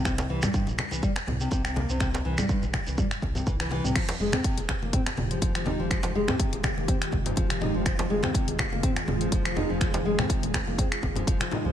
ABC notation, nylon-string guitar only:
X:1
M:4/4
L:1/16
Q:"Swing 16ths" 1/4=123
K:Fm
V:1 name="Nylon-string guitar" clef=bass
C, C, =E, G, G,, z2 E, G, z2 C, C, C, B, C, | C, C, =E, G, G,, z2 E, G, z2 C, E, E, E, C, | F, F, A, C C, z2 B, C z2 F, F, F, E F, | F, F, A, C C, z2 B, C z2 F, F, F, E F, |
F, F, A, C C, z2 B, C z2 F, F, F, E F, | F, F, A, C C, z2 B, C z2 F, F, F, E F, |]